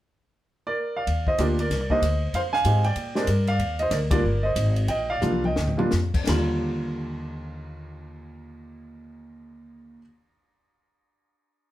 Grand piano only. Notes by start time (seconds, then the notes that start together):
0.67 A#4 D5
0.97 D5 F5
1.28 C5 D#5
1.38 A#3 D4 F4 G4 A#4 D5
1.60 A#4 D5
1.81 D5
1.90 A#3 D4 D#4 G4 C5 D#5
2.35 C5 F5
2.53 F5 G#5
2.65 G#3 C4 D#4 G4
2.84 D5 G5
3.15 G#3 C4 D4 G4 A#4 D5
3.48 D5 F5
3.79 C5 D#5
3.91 A#4 D5
4.11 G3 A#3 D4 F4 A#4 D5
4.43 C5 D#5
4.88 D#5 G5
5.10 D5 F5
5.21 G3 A#3 D4 F4
5.45 D#5 G5
5.77 G3 A#3 D4 F4
6.26 D#2 D3 G3 F4 A#5